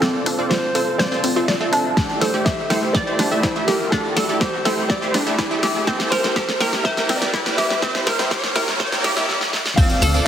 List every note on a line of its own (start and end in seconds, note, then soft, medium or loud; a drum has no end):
0.00 0.08 C4 loud
0.00 0.36 C4 medium
0.00 0.36 F4 medium
0.00 0.52 A4 medium
0.00 0.36 A4 medium
0.00 0.36 D5 medium
0.00 snare medium
0.00 closed hi-hat medium
0.00 riser medium
0.26 0.45 D2 medium
0.26 0.36 D4 medium
0.26 closed hi-hat medium
0.26 open hi-hat loud
0.39 0.55 C4 medium
0.39 0.55 F4 medium
0.39 0.55 A4 medium
0.39 0.55 D5 loud
0.49 0.60 F4 medium
0.49 1.00 C5 medium
0.49 snare medium
0.49 snare loud
0.49 closed hi-hat medium
0.75 0.94 C2 loud
0.75 1.09 C4 medium
0.75 1.09 F4 medium
0.75 0.84 A4 medium
0.75 1.09 A4 medium
0.75 1.09 C5 loud
0.75 closed hi-hat medium
0.75 open hi-hat medium
0.98 1.06 C5 loud
0.98 1.68 D5 medium
0.98 snare medium
0.98 closed hi-hat medium
1.12 1.33 C4 medium
1.12 1.33 F4 medium
1.12 1.33 A4 medium
1.12 1.33 C5 loud
1.12 snare soft
1.24 1.43 D2 loud
1.24 1.30 C4 medium
1.24 closed hi-hat medium
1.24 open hi-hat loud
1.36 1.47 C4 medium
1.36 1.42 F4 medium
1.36 1.47 F4 medium
1.36 1.47 A4 medium
1.36 1.47 E5 loud
1.48 1.52 D5 medium
1.48 snare medium
1.48 snare loud
1.48 closed hi-hat medium
1.61 1.94 C4 loud
1.61 1.94 F4 medium
1.61 1.94 A4 medium
1.61 1.94 E5 loud
1.73 1.92 D2 loud
1.73 1.76 D4 loud
1.73 snare soft
1.73 closed hi-hat medium
1.73 open hi-hat medium
1.97 2.31 A3 medium
1.97 2.03 D4 loud
1.97 2.31 E4 medium
1.97 2.31 G4 medium
1.97 2.31 D5 loud
1.97 kick loud
1.97 snare medium
1.97 closed hi-hat medium
2.10 closed hi-hat soft
2.20 2.40 A1 medium
2.20 2.28 A4 medium
2.20 2.46 C5 medium
2.20 snare medium
2.20 closed hi-hat medium
2.20 open hi-hat loud
2.34 2.51 A3 medium
2.34 2.51 E4 medium
2.34 2.51 G4 medium
2.34 2.51 D5 loud
2.44 2.55 G4 medium
2.44 2.95 E5 loud
2.44 kick loud
2.44 snare loud
2.44 snare medium
2.44 closed hi-hat medium
2.70 2.89 G1 loud
2.70 3.04 A3 medium
2.70 3.04 E4 medium
2.70 3.04 G4 medium
2.70 2.80 A4 medium
2.70 3.04 C5 loud
2.70 snare medium
2.70 open hi-hat medium
2.93 3.44 D5 loud
2.93 3.01 D5 loud
2.93 kick loud
2.93 snare medium
2.93 closed hi-hat medium
3.07 3.29 A3 medium
3.07 3.29 E4 medium
3.07 3.29 G4 medium
3.07 3.29 C5 loud
3.19 3.38 A1 medium
3.19 3.28 D4 medium
3.19 snare medium
3.19 closed hi-hat medium
3.19 open hi-hat loud
3.31 3.42 A3 loud
3.31 3.42 E4 medium
3.31 3.42 G4 medium
3.31 3.42 E5 loud
3.42 3.53 E4 medium
3.42 3.48 C5 medium
3.42 kick loud
3.42 snare loud
3.42 snare medium
3.42 closed hi-hat medium
3.56 3.89 A3 loud
3.56 3.89 E4 medium
3.56 3.89 G4 medium
3.56 3.89 E5 loud
3.56 closed hi-hat soft
3.66 3.87 A1 medium
3.66 3.77 G4 medium
3.66 3.92 A#4 medium
3.66 snare medium
3.66 closed hi-hat medium
3.66 open hi-hat medium
3.91 4.26 A3 medium
3.91 3.98 D4 loud
3.91 4.26 E4 medium
3.91 4.26 G4 medium
3.91 4.37 A4 medium
3.91 4.26 D5 loud
3.91 kick loud
3.91 snare medium
3.91 closed hi-hat medium
4.17 4.36 A1 medium
4.17 4.23 A4 medium
4.17 snare medium
4.17 closed hi-hat medium
4.17 open hi-hat loud
4.29 4.46 A3 medium
4.29 4.46 E4 medium
4.29 4.46 G4 medium
4.29 4.46 D5 loud
4.40 4.50 G4 medium
4.40 4.91 C5 medium
4.40 kick loud
4.40 snare loud
4.40 snare medium
4.40 closed hi-hat medium
4.65 4.84 G1 loud
4.65 4.99 A3 medium
4.65 4.99 E4 medium
4.65 4.99 G4 medium
4.65 4.75 A4 medium
4.65 4.99 C5 loud
4.65 snare medium
4.65 closed hi-hat medium
4.65 open hi-hat medium
4.88 5.58 D5 medium
4.88 4.96 D5 loud
4.88 kick loud
4.88 snare medium
4.88 closed hi-hat medium
5.02 5.24 A3 medium
5.02 5.24 E4 medium
5.02 5.24 G4 medium
5.02 5.24 C5 loud
5.02 snare soft
5.14 5.33 A1 medium
5.14 5.24 D4 medium
5.14 snare soft
5.14 snare medium
5.14 closed hi-hat medium
5.14 open hi-hat loud
5.27 5.37 A3 loud
5.27 5.37 E4 medium
5.27 5.37 G4 medium
5.27 5.37 E5 loud
5.39 5.48 E4 medium
5.39 kick loud
5.39 snare loud
5.39 snare medium
5.39 closed hi-hat medium
5.51 5.84 A3 loud
5.51 5.84 E4 medium
5.51 5.84 G4 medium
5.51 5.84 E5 loud
5.63 5.82 A1 medium
5.63 5.72 G4 medium
5.63 snare soft
5.63 snare medium
5.63 closed hi-hat medium
5.63 open hi-hat medium
5.87 6.21 A#3 medium
5.87 5.94 C4 loud
5.87 6.21 E4 medium
5.87 6.21 G4 medium
5.87 6.21 C5 loud
5.87 kick loud
5.87 snare medium
5.87 closed hi-hat medium
6.00 snare medium
6.00 closed hi-hat soft
6.10 6.31 C2 loud
6.10 6.18 A#4 medium
6.10 6.56 C5 loud
6.10 snare medium
6.10 closed hi-hat medium
6.10 open hi-hat loud
6.24 6.41 A#3 medium
6.24 6.41 E4 medium
6.24 6.41 G4 medium
6.24 6.41 C5 loud
6.24 snare medium
6.36 6.46 G4 medium
6.36 kick loud
6.36 snare loud
6.36 closed hi-hat medium
6.49 snare medium
6.60 6.79 A#1 loud
6.60 6.94 A#3 medium
6.60 6.94 E4 medium
6.60 6.94 G4 medium
6.60 6.70 A#4 medium
6.60 6.94 A#4 loud
6.60 snare medium
6.60 open hi-hat medium
6.73 snare medium
6.83 6.91 C5 loud
6.83 7.18 E5 loud
6.83 kick loud
6.83 snare medium
6.83 closed hi-hat medium
6.97 7.19 A#3 medium
6.97 7.19 E4 medium
6.97 7.19 G4 medium
6.97 7.19 A#4 loud
6.97 snare medium
7.09 7.28 C2 medium
7.09 7.19 C4 medium
7.09 snare medium
7.09 closed hi-hat medium
7.09 open hi-hat loud
7.16 7.47 D5 loud
7.22 7.32 A#3 loud
7.22 7.32 E4 medium
7.22 7.32 G4 medium
7.22 7.32 D5 loud
7.22 snare medium
7.34 7.43 E4 medium
7.34 kick loud
7.34 snare medium
7.34 snare loud
7.34 closed hi-hat medium
7.46 7.80 A#3 loud
7.46 7.80 E4 medium
7.46 7.80 G4 medium
7.46 7.80 D5 loud
7.46 snare medium
7.46 closed hi-hat soft
7.57 7.77 C2 medium
7.57 7.67 G4 medium
7.57 9.24 E5 loud
7.57 snare loud
7.57 closed hi-hat medium
7.57 open hi-hat medium
7.70 snare medium
7.82 8.16 A#3 medium
7.82 7.89 C4 loud
7.82 8.16 E4 medium
7.82 8.16 G4 medium
7.82 8.16 C5 loud
7.82 kick loud
7.82 snare loud
7.82 closed hi-hat medium
7.95 snare medium
8.07 8.26 C2 loud
8.07 8.13 A#4 medium
8.07 snare loud
8.07 closed hi-hat medium
8.07 open hi-hat loud
8.19 8.36 A#3 medium
8.19 8.36 E4 medium
8.19 8.36 G4 medium
8.19 8.36 C5 loud
8.19 snare medium
8.31 8.41 G4 medium
8.31 kick loud
8.31 snare loud
8.31 closed hi-hat medium
8.44 snare medium
8.55 8.74 A#1 loud
8.55 8.89 A#3 medium
8.55 8.89 E4 medium
8.55 8.89 G4 medium
8.55 8.65 A#4 medium
8.55 8.89 A#4 loud
8.55 snare loud
8.55 closed hi-hat medium
8.55 open hi-hat medium
8.68 snare medium
8.80 8.86 C5 loud
8.80 kick loud
8.80 snare loud
8.80 closed hi-hat medium
8.92 9.14 A#3 medium
8.92 9.14 E4 medium
8.92 9.14 G4 medium
8.92 9.14 A#4 loud
8.92 snare soft
8.92 snare loud
9.04 9.23 C2 medium
9.04 9.14 G4 medium
9.04 snare loud
9.04 snare soft
9.04 closed hi-hat medium
9.04 open hi-hat loud
9.17 9.27 A#3 loud
9.17 9.27 E4 medium
9.17 9.27 G4 medium
9.17 9.27 E5 loud
9.17 snare medium
9.29 snare medium
9.41 snare medium
9.53 snare medium
9.66 snare medium
9.76 10.11 C4 medium
9.76 9.84 C4 loud
9.76 10.11 F4 medium
9.76 10.11 A4 medium
9.76 10.11 D5 loud
9.76 10.24 F5 loud
9.76 10.27 F5 loud
9.76 kick loud
9.76 closed hi-hat medium
9.76 crash loud
9.76 tambourine soft
9.76 impact medium
9.90 closed hi-hat soft
9.90 tambourine soft
10.02 10.21 D2 loud
10.02 10.08 A4 medium
10.02 closed hi-hat medium
10.02 open hi-hat loud
10.02 tambourine medium
10.14 10.28 C4 medium
10.14 10.28 F4 medium
10.14 10.28 A4 medium
10.14 10.28 D5 loud
10.14 tambourine soft